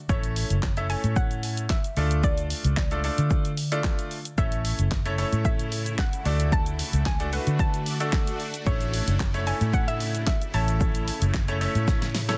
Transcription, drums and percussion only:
0.09 kick, shaker
0.23 closed hi-hat, shaker
0.36 open hi-hat, shaker
0.50 closed hi-hat, shaker
0.63 kick, snare, clap, shaker
0.77 closed hi-hat, shaker
0.90 open hi-hat, shaker
1.04 closed hi-hat, shaker
1.16 kick, shaker
1.31 closed hi-hat, shaker
1.43 open hi-hat, shaker
1.57 closed hi-hat, shaker
1.70 kick, snare, clap, shaker
1.84 closed hi-hat, shaker
1.97 open hi-hat, shaker
2.11 closed hi-hat, shaker
2.23 kick, shaker
2.38 closed hi-hat, shaker
2.50 open hi-hat, shaker
2.64 closed hi-hat, shaker
2.77 kick, snare, clap, shaker
2.91 closed hi-hat, shaker
3.04 open hi-hat, shaker
3.18 closed hi-hat, shaker
3.30 kick, shaker
3.45 closed hi-hat, shaker
3.57 open hi-hat, shaker
3.72 closed hi-hat, shaker
3.84 kick, snare, clap, shaker
3.99 closed hi-hat, shaker
4.11 open hi-hat, shaker
4.25 closed hi-hat, shaker
4.38 kick, shaker
4.52 closed hi-hat, shaker
4.65 open hi-hat, shaker
4.79 closed hi-hat, shaker
4.91 kick, snare, clap, shaker
5.06 closed hi-hat, shaker
5.18 open hi-hat, shaker
5.33 closed hi-hat, shaker
5.45 kick, shaker
5.59 closed hi-hat, shaker
5.72 open hi-hat, shaker
5.86 closed hi-hat, shaker
5.98 kick, snare, clap, shaker
6.13 closed hi-hat, shaker
6.25 open hi-hat, shaker
6.40 closed hi-hat, shaker
6.52 kick, shaker
6.66 closed hi-hat, shaker
6.79 open hi-hat, shaker
6.93 closed hi-hat, shaker
7.06 kick, snare, clap, shaker
7.20 closed hi-hat, shaker
7.33 open hi-hat, shaker
7.47 closed hi-hat, shaker
7.59 kick, shaker
7.74 closed hi-hat, shaker
7.86 open hi-hat, shaker
8.00 closed hi-hat, shaker
8.13 kick, snare, clap, shaker
8.27 closed hi-hat, shaker
8.40 open hi-hat, shaker
8.54 closed hi-hat, shaker
8.66 kick, shaker
8.81 closed hi-hat, shaker
8.94 open hi-hat, shaker
9.08 closed hi-hat, shaker
9.20 kick, snare, clap, shaker
9.34 closed hi-hat, shaker
9.47 open hi-hat, shaker
9.61 closed hi-hat, shaker
9.73 kick, shaker
9.88 closed hi-hat, shaker
10.00 open hi-hat, shaker
10.15 closed hi-hat, shaker
10.27 kick, snare, clap, shaker
10.42 closed hi-hat, shaker
10.54 open hi-hat, shaker
10.68 closed hi-hat, shaker
10.81 kick, shaker
10.95 closed hi-hat, shaker
11.08 open hi-hat, shaker
11.22 closed hi-hat, shaker
11.34 kick, snare, clap, shaker
11.48 closed hi-hat, shaker
11.61 open hi-hat, shaker
11.75 closed hi-hat, shaker
11.88 kick, snare, shaker
12.02 snare, closed hi-hat, shaker
12.15 snare, open hi-hat, shaker
12.29 snare, closed hi-hat, shaker

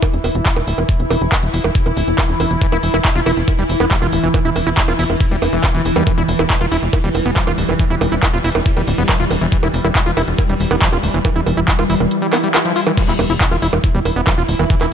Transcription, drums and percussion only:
0.03 kick, closed hi-hat, high bongo
0.13 closed hi-hat
0.24 open hi-hat, high bongo
0.35 closed hi-hat
0.46 kick, clap, closed hi-hat
0.56 closed hi-hat, high bongo
0.67 open hi-hat
0.78 closed hi-hat, high bongo
0.89 kick, closed hi-hat
1.00 closed hi-hat
1.10 open hi-hat, high bongo
1.21 closed hi-hat
1.32 kick, clap, closed hi-hat, high bongo
1.43 closed hi-hat
1.54 open hi-hat
1.64 closed hi-hat, high bongo
1.75 kick, closed hi-hat
1.86 closed hi-hat, high bongo
1.97 open hi-hat
2.08 closed hi-hat
2.18 kick, clap, closed hi-hat, high bongo
2.29 closed hi-hat
2.40 open hi-hat, high bongo
2.51 closed hi-hat
2.62 kick, closed hi-hat
2.72 closed hi-hat, high bongo
2.83 open hi-hat
2.94 closed hi-hat, high bongo
3.05 kick, clap, closed hi-hat
3.15 closed hi-hat
3.26 open hi-hat, high bongo
3.37 closed hi-hat
3.48 kick, closed hi-hat, high bongo
3.59 closed hi-hat
3.69 open hi-hat
3.80 closed hi-hat, high bongo
3.91 kick, clap, closed hi-hat
4.02 closed hi-hat, high bongo
4.13 open hi-hat
4.23 closed hi-hat
4.34 kick, closed hi-hat, high bongo
4.45 closed hi-hat
4.56 open hi-hat, high bongo
4.67 closed hi-hat
4.77 kick, clap, closed hi-hat
4.88 closed hi-hat, high bongo
4.99 open hi-hat
5.10 closed hi-hat, high bongo
5.20 kick, closed hi-hat
5.31 closed hi-hat
5.42 open hi-hat, high bongo
5.53 closed hi-hat
5.64 kick, clap, closed hi-hat, high bongo
5.74 closed hi-hat
5.85 open hi-hat
5.96 closed hi-hat, high bongo
6.07 kick, closed hi-hat, high bongo
6.18 closed hi-hat
6.28 open hi-hat
6.39 closed hi-hat, high bongo
6.50 kick, clap, closed hi-hat
6.61 closed hi-hat, high bongo
6.72 open hi-hat
6.93 kick, closed hi-hat, high bongo
7.04 closed hi-hat
7.15 open hi-hat, high bongo
7.26 closed hi-hat
7.36 kick, clap, closed hi-hat
7.47 closed hi-hat, high bongo
7.58 open hi-hat
7.69 closed hi-hat, high bongo
7.79 kick, closed hi-hat
7.90 closed hi-hat
8.01 open hi-hat, high bongo
8.12 closed hi-hat
8.23 kick, clap, closed hi-hat, high bongo
8.33 closed hi-hat
8.44 open hi-hat
8.55 closed hi-hat, high bongo
8.66 kick, closed hi-hat
8.77 closed hi-hat, high bongo
8.87 open hi-hat
8.98 closed hi-hat
9.09 kick, clap, closed hi-hat, high bongo
9.20 closed hi-hat
9.31 open hi-hat, high bongo
9.41 closed hi-hat
9.52 kick, closed hi-hat
9.63 closed hi-hat, high bongo
9.74 open hi-hat
9.85 closed hi-hat, high bongo
9.95 kick, clap, closed hi-hat
10.06 closed hi-hat
10.17 open hi-hat, high bongo
10.28 closed hi-hat
10.38 kick, closed hi-hat, high bongo
10.49 closed hi-hat
10.60 open hi-hat
10.71 closed hi-hat, high bongo
10.82 kick, clap, closed hi-hat
10.92 closed hi-hat, high bongo
11.03 open hi-hat
11.14 closed hi-hat
11.25 kick, closed hi-hat, high bongo
11.36 closed hi-hat
11.46 open hi-hat, high bongo
11.57 closed hi-hat
11.68 kick, clap, closed hi-hat
11.79 closed hi-hat, high bongo
11.90 open hi-hat
12.00 closed hi-hat, high bongo
12.11 closed hi-hat
12.22 closed hi-hat
12.33 clap, open hi-hat, high bongo
12.44 closed hi-hat
12.54 clap, closed hi-hat, high bongo
12.65 closed hi-hat
12.76 open hi-hat
12.87 high bongo
12.97 kick, closed hi-hat, crash, high bongo
13.08 clap, closed hi-hat
13.19 open hi-hat, high bongo
13.30 closed hi-hat
13.41 kick, clap, closed hi-hat
13.51 closed hi-hat, high bongo
13.62 open hi-hat
13.73 closed hi-hat, high bongo
13.84 kick, closed hi-hat
13.95 closed hi-hat
14.05 open hi-hat, high bongo
14.16 closed hi-hat
14.27 kick, clap, closed hi-hat, high bongo
14.38 closed hi-hat
14.49 open hi-hat
14.59 closed hi-hat, high bongo
14.70 kick, closed hi-hat
14.81 clap, closed hi-hat, high bongo

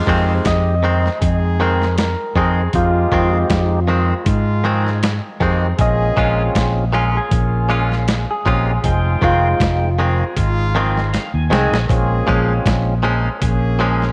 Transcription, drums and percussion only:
0.07 kick
0.45 kick, snare, closed hi-hat
1.06 snare
1.22 kick, closed hi-hat
1.82 snare
1.98 snare, closed hi-hat
2.36 kick
2.73 kick, closed hi-hat
3.12 kick
3.50 kick, snare, closed hi-hat
4.26 kick, closed hi-hat
4.87 snare
5.03 snare, closed hi-hat
5.41 kick
5.79 kick, closed hi-hat
6.17 kick
6.55 kick, snare, closed hi-hat
7.31 kick, closed hi-hat
7.92 snare
8.08 snare, closed hi-hat
8.46 kick
8.84 kick, closed hi-hat
9.22 kick
9.60 kick, snare, closed hi-hat
10.37 kick, closed hi-hat
10.97 snare
11.14 snare, closed hi-hat
11.53 snare
11.74 snare
11.89 kick, closed hi-hat
12.28 kick
12.66 kick, snare, closed hi-hat
13.42 kick, closed hi-hat
14.02 snare

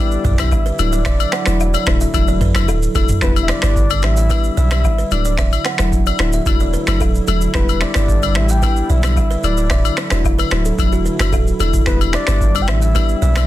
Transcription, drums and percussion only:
0.11 shaker
0.25 kick, mid tom, shaker
0.38 finger snap, cross-stick, high agogo, shaker
0.52 kick, low woodblock, shaker
0.66 shaker
0.79 high agogo, shaker
0.93 shaker
1.05 finger snap, kick, cross-stick, shaker
1.20 high agogo, shaker
1.32 finger snap, cross-stick, shaker
1.46 finger snap, cross-stick, shaker
1.60 low woodblock, shaker
1.74 high agogo, shaker
1.86 finger snap, kick, cross-stick, shaker
2.01 shaker
2.14 kick, high agogo, shaker
2.28 shaker
2.41 kick, mid tom, shaker
2.55 finger snap, cross-stick, high agogo, shaker
2.68 low woodblock, shaker
2.83 shaker
2.95 kick, high agogo, shaker
3.09 mid tom, shaker
3.21 finger snap, kick, cross-stick, shaker
3.36 high agogo, shaker
3.48 finger snap, cross-stick, shaker
3.62 finger snap, cross-stick, shaker
3.76 kick, shaker
3.90 high agogo, shaker
4.03 finger snap, cross-stick, shaker
4.17 shaker
4.30 kick, high agogo, shaker
4.44 shaker
4.57 shaker
4.71 finger snap, cross-stick, high agogo, shaker
4.84 kick, low woodblock, shaker
4.99 shaker
5.11 high agogo, shaker
5.25 shaker
5.38 finger snap, kick, cross-stick, shaker
5.53 high agogo, shaker
5.65 finger snap, cross-stick, shaker
5.78 finger snap, cross-stick, shaker
5.92 kick, shaker
6.06 high agogo, shaker
6.19 finger snap, cross-stick, shaker
6.33 shaker
6.46 kick, high agogo, shaker
6.60 shaker
6.73 shaker
6.87 finger snap, cross-stick, high agogo, shaker
7.00 kick, low woodblock, shaker
7.15 shaker
7.27 high agogo, shaker
7.41 shaker
7.54 finger snap, kick, cross-stick, shaker
7.69 high agogo, shaker
7.81 finger snap, cross-stick, shaker
7.94 finger snap, cross-stick, shaker
8.08 kick, shaker
8.23 high agogo, shaker
8.35 finger snap, cross-stick, shaker
8.49 shaker
8.62 kick, high agogo, shaker
8.76 shaker
8.90 shaker
9.03 finger snap, cross-stick, high agogo, shaker
9.16 kick, low woodblock, shaker
9.31 shaker
9.43 high agogo, shaker
9.57 shaker
9.70 finger snap, kick, cross-stick, shaker
9.85 high agogo, shaker
9.97 finger snap, cross-stick, shaker
10.10 finger snap, cross-stick, shaker
10.25 kick, low woodblock, shaker
10.39 high agogo, shaker
10.51 finger snap, cross-stick, shaker
10.65 shaker
10.79 kick, high agogo, shaker
10.92 shaker
11.06 shaker
11.19 finger snap, cross-stick, high agogo, shaker
11.33 kick, low woodblock, shaker
11.47 shaker
11.60 high agogo, shaker
11.74 kick, shaker
11.86 finger snap, kick, cross-stick, shaker
12.01 high agogo, shaker
12.13 finger snap, cross-stick, shaker
12.27 finger snap, cross-stick, shaker
12.41 kick, shaker
12.55 high agogo, shaker
12.68 finger snap, cross-stick, shaker
12.82 shaker
12.95 kick, high agogo, shaker
13.09 shaker
13.22 shaker
13.36 finger snap, cross-stick, high agogo, shaker

